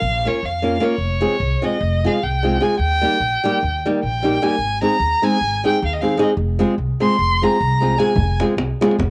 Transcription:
0.00 0.27 A#1 loud
0.00 0.29 F5 medium
0.25 0.39 A#3 medium
0.25 0.40 C#4 medium
0.25 0.39 F4 medium
0.25 0.40 A#4 medium
0.25 0.47 C#5 medium
0.42 0.76 F2 medium
0.42 0.84 F5 medium
0.62 0.76 A#3 medium
0.62 0.77 C#4 medium
0.62 0.77 F4 soft
0.62 0.77 A#4 medium
0.80 0.94 A#3 medium
0.80 0.94 C#4 medium
0.80 0.94 F4 medium
0.80 0.95 A#4 medium
0.80 1.67 C#5 medium
0.98 1.23 F1 medium
1.21 1.35 G#3 medium
1.21 1.35 C4 medium
1.21 1.35 F4 soft
1.21 1.36 G#4 medium
1.40 1.54 C2 medium
1.62 1.76 G#3 medium
1.62 1.77 C4 medium
1.62 1.77 F4 medium
1.62 1.77 G#4 medium
1.62 2.08 D#5 medium
1.81 2.06 F1 medium
2.04 2.19 G#3 medium
2.04 2.18 C4 medium
2.04 2.19 F4 medium
2.04 2.19 G#4 medium
2.04 2.25 F5 medium
2.23 2.57 C2 medium
2.23 2.65 G5 medium
2.43 2.57 G#3 medium
2.43 2.57 C4 soft
2.43 2.57 F4 medium
2.43 2.57 G#4 medium
2.60 2.74 G#3 medium
2.60 2.74 C4 medium
2.60 2.75 F4 medium
2.60 2.75 G#4 medium
2.60 2.79 G#5 medium
2.79 3.04 D#2 medium
2.79 3.82 G5 loud
3.01 3.16 G3 medium
3.01 3.16 A#3 medium
3.01 3.16 D#4 medium
3.01 3.17 G4 medium
3.20 3.34 A#1 medium
3.44 3.57 G3 medium
3.44 3.58 A#3 medium
3.44 3.58 D#4 medium
3.44 3.58 G4 medium
3.63 3.87 D#2 medium
3.86 3.99 G3 medium
3.86 3.99 A#3 medium
3.86 3.99 D#4 medium
3.86 4.00 G4 medium
4.03 4.36 A#1 medium
4.03 4.44 G5 medium
4.23 4.36 G3 medium
4.23 4.37 A#3 medium
4.23 4.37 D#4 medium
4.23 4.38 G4 medium
4.42 4.55 G3 medium
4.42 4.55 A#3 medium
4.42 4.55 D#4 medium
4.42 4.55 G4 medium
4.42 4.82 G#5 medium
4.58 4.83 G#1 medium
4.82 4.95 G#3 medium
4.82 4.96 C4 medium
4.82 4.96 D#4 medium
4.82 4.96 G#4 medium
4.82 5.25 A#5 medium
5.00 5.14 D#2 medium
5.22 5.36 G#3 medium
5.22 5.37 C4 medium
5.22 5.37 D#4 medium
5.22 5.37 G#4 medium
5.22 5.65 G#5 loud
5.41 5.66 G#1 medium
5.64 5.78 G#3 medium
5.64 5.78 C4 medium
5.64 5.78 D#4 medium
5.64 5.78 G#4 medium
5.64 5.82 G5 medium
5.82 6.16 D#2 loud
5.82 5.94 F5 medium
5.93 6.02 D#5 medium
6.01 6.15 G#3 medium
6.01 6.16 C4 medium
6.01 6.16 D#4 medium
6.01 6.16 G#4 medium
6.01 6.22 F5 medium
6.17 6.32 G#3 medium
6.17 6.32 C4 medium
6.17 6.33 D#4 medium
6.17 6.33 G#4 medium
6.22 6.30 D#5 medium
6.37 6.62 F1 medium
6.59 6.73 G#3 medium
6.59 6.74 C4 medium
6.59 6.74 F4 medium
6.59 6.74 G#4 medium
6.78 6.92 C2 medium
7.00 7.15 G#3 medium
7.00 7.15 C4 medium
7.00 7.15 F4 medium
7.00 7.16 G#4 medium
7.00 7.45 C6 medium
7.19 7.44 F1 medium
7.42 7.56 G#3 medium
7.42 7.56 C4 medium
7.42 7.57 F4 medium
7.42 7.57 G#4 medium
7.42 8.00 A#5 medium
7.61 7.94 C2 medium
7.80 7.94 G#3 soft
7.80 7.95 C4 medium
7.80 7.95 F4 medium
7.80 7.95 G#4 medium
7.98 8.11 G#3 medium
7.98 8.12 C4 medium
7.98 8.12 F4 medium
7.98 8.12 G#4 medium
7.98 8.39 G#5 medium
8.16 8.41 F1 medium
8.16 davul low loud
8.40 8.53 G#3 medium
8.40 8.54 C4 soft
8.40 8.54 F4 medium
8.40 8.54 G#4 medium
8.40 davul high medium
8.57 8.71 C2 medium
8.57 davul high medium
8.81 8.94 G#3 medium
8.81 8.95 C4 medium
8.81 8.95 F4 medium
8.81 8.96 G#4 medium
8.81 davul high medium
8.91 davul high soft
8.98 9.10 F1 medium
8.98 davul high medium
8.98 davul low medium

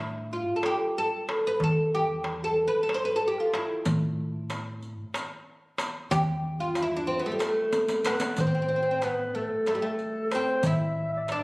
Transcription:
0.00 0.41 A2 loud
0.00 0.32 E4 medium
0.31 0.56 F4 medium
0.31 darbuka ka soft
0.56 0.63 A4 medium
0.63 0.98 G4 medium
0.63 darbuka tek medium
0.98 1.47 A4 medium
1.29 darbuka tek medium
1.47 1.62 B4 medium
1.60 2.67 E2 medium
1.60 1.94 A4 medium
1.60 darbuka dum medium
1.95 2.44 G4 medium
2.24 darbuka tek medium
2.44 2.65 A4 medium
2.57 darbuka ka soft
2.68 2.81 B4 loud
2.83 2.94 A4 medium
2.89 darbuka tek medium
2.94 3.05 C5 loud
3.05 3.15 B4 medium
3.16 3.27 A4 loud
3.28 3.40 G4 medium
3.40 3.54 F4 medium
3.54 4.89 E4 medium
3.54 darbuka tek medium
3.85 4.93 A2 loud
3.85 riq medium
3.85 darbuka dum medium
4.50 riq soft
4.50 darbuka tek medium
4.83 riq soft
4.83 darbuka ka soft
5.14 riq medium
5.14 darbuka tek medium
5.78 riq medium
5.78 darbuka tek medium
6.11 7.19 E2 loud
6.11 6.57 G4 loud
6.11 riq medium
6.11 darbuka dum loud
6.60 6.82 F4 medium
6.75 riq medium
6.75 darbuka tek medium
6.82 6.97 E4 medium
6.97 7.08 D4 medium
7.07 7.19 C4 medium
7.19 7.26 B3 medium
7.26 7.32 A3 medium
7.32 7.39 G3 medium
7.39 8.12 A3 medium
7.39 riq medium
7.39 darbuka tek medium
7.73 riq medium
7.73 darbuka tek medium
7.88 riq medium
7.88 darbuka ka medium
8.04 8.40 B3 medium
8.04 8.42 B4 medium
8.04 riq medium
8.04 darbuka tek medium
8.20 riq medium
8.20 darbuka ka medium
8.37 9.45 A1 medium
8.37 8.46 C4 medium
8.37 9.05 C5 medium
8.37 riq medium
8.37 darbuka dum medium
8.47 8.53 C4 medium
8.55 8.61 C4 medium
8.62 8.67 C4 medium
8.69 8.75 C4 medium
8.76 8.81 C4 medium
8.83 8.90 C4 medium
8.91 8.98 C4 medium
9.02 9.34 B3 medium
9.02 9.37 B4 medium
9.02 riq soft
9.02 darbuka tek medium
9.35 9.67 A3 medium
9.35 9.68 A4 medium
9.35 darbuka ka soft
9.66 9.74 A3 medium
9.66 9.82 A4 medium
9.66 riq soft
9.66 darbuka tek medium
9.75 9.82 G3 medium
9.82 10.34 A3 medium
9.82 10.34 A4 medium
9.99 riq soft
9.99 darbuka ka soft
10.31 10.66 C4 medium
10.31 10.68 C5 medium
10.31 riq soft
10.31 darbuka tek medium
10.63 11.43 A1 medium
10.63 11.31 E4 medium
10.63 11.12 E5 medium
10.63 riq medium
10.63 darbuka dum medium
11.13 11.18 E5 medium
11.17 11.22 D5 medium
11.17 11.32 E5 medium
11.28 11.43 D4 medium
11.28 11.43 D5 medium
11.28 riq soft
11.28 darbuka tek medium

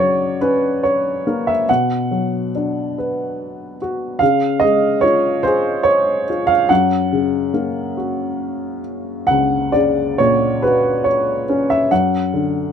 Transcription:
0.00 1.64 F#2 soft
0.00 1.22 C#3 soft
0.00 1.65 F#3 soft
0.00 0.37 C#5 medium
0.00 1.70 D5 medium
0.00 1.69 F#5 medium
0.41 1.65 C#4 soft
0.41 0.81 B4 medium
0.83 1.49 C#5 medium
1.27 1.68 A#3 medium
1.47 1.69 E5 medium
1.69 4.18 B2 medium
1.69 2.51 F#5 medium
2.11 3.76 F#3 soft
2.55 4.17 D4 soft
2.98 4.18 B4 soft
3.82 4.21 F#4 medium
4.19 6.67 C#3 medium
4.19 4.62 F5 medium
4.60 6.25 G#3 soft
4.60 5.03 D#5 medium
5.01 6.28 F4 medium
5.01 5.44 C#5 medium
5.43 6.67 G#4 medium
5.43 5.87 C5 medium
5.83 6.50 C#5 medium
6.30 6.70 F4 medium
6.47 6.70 F5 medium
6.69 9.26 F#2 medium
6.69 7.49 F#5 medium
7.13 8.81 C#3 soft
7.54 9.26 A#3 soft
7.97 9.72 F#4 soft
9.27 9.75 F#5 medium
9.31 11.87 C#2 medium
9.72 11.45 C#3 soft
9.72 10.19 D5 medium
10.18 11.87 A#2 soft
10.18 10.64 C#5 medium
10.62 11.87 F#4 soft
10.62 11.07 B4 medium
11.04 11.65 C#5 medium
11.49 11.89 C#4 medium
11.70 11.91 E5 medium
11.91 12.72 F#2 medium
11.91 12.70 F#5 medium
12.34 12.72 D3 soft

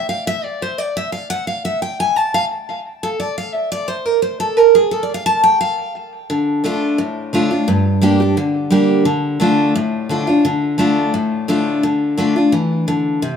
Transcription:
0.09 0.27 F5 medium
0.27 0.44 E5 loud
0.44 0.61 D5 medium
0.62 0.78 C5 medium
0.78 0.96 D5 loud
0.97 1.12 E5 loud
1.12 1.30 F5 loud
1.30 1.47 F#5 loud
1.47 1.64 F5 medium
1.65 1.81 E5 loud
1.82 1.99 G5 medium
2.00 2.16 G#5 loud
2.16 2.34 A5 loud
2.34 2.44 F5 loud
3.03 3.19 A4 loud
3.20 3.37 D5 medium
3.38 3.54 F5 loud
3.54 3.71 E5 medium
3.72 3.88 D5 loud
3.88 4.05 C5 loud
4.05 4.22 A#4 loud
4.22 4.39 C5 medium
4.40 4.57 A4 medium
4.57 4.74 A#4 medium
4.75 4.91 G#4 loud
4.91 5.03 A4 medium
5.03 5.14 D5 medium
5.14 5.26 F5 loud
5.26 5.43 A5 loud
5.44 5.60 G5 loud
5.61 5.93 F5 loud
6.30 6.62 D3 medium
6.64 6.97 D3 medium
6.64 6.97 A3 medium
6.64 6.98 D4 medium
6.64 6.98 F4 loud
6.98 7.64 A2 medium
7.33 7.50 D3 medium
7.33 7.51 A3 medium
7.33 7.51 D4 medium
7.33 7.50 F4 medium
7.51 7.68 D4 soft
7.51 7.67 F4 medium
7.68 8.34 G2 medium
8.01 8.19 G3 medium
8.01 8.20 A#3 medium
8.01 8.20 D4 loud
8.01 8.19 G4 medium
8.20 8.37 D4 soft
8.20 8.36 G4 medium
8.37 9.03 D3 medium
8.70 9.04 G3 medium
8.70 9.05 A#3 medium
8.70 9.05 D4 medium
8.70 9.05 G4 medium
9.05 9.38 D3 medium
9.40 9.73 D3 loud
9.40 9.74 A3 loud
9.40 9.74 D4 medium
9.40 9.74 F4 loud
9.75 10.41 A2 medium
10.09 10.27 D3 medium
10.09 10.27 A3 medium
10.09 10.27 D4 medium
10.09 10.26 F4 loud
10.27 10.45 D4 soft
10.27 10.44 F4 medium
10.45 10.77 D3 medium
10.78 11.11 D3 medium
10.78 11.12 A3 medium
10.78 11.12 D4 medium
10.78 11.13 F4 medium
11.14 11.80 A2 medium
11.48 11.81 D3 medium
11.48 11.82 A3 medium
11.48 11.82 D4 loud
11.48 11.82 F4 medium
11.83 12.16 D3 medium
12.17 12.35 D3 medium
12.17 12.35 A3 loud
12.17 12.36 D4 medium
12.17 12.35 F4 medium
12.36 12.53 D4 medium
12.36 12.52 F4 medium
12.52 12.85 E3 medium
12.88 13.21 D3 medium
13.22 13.37 C3 medium

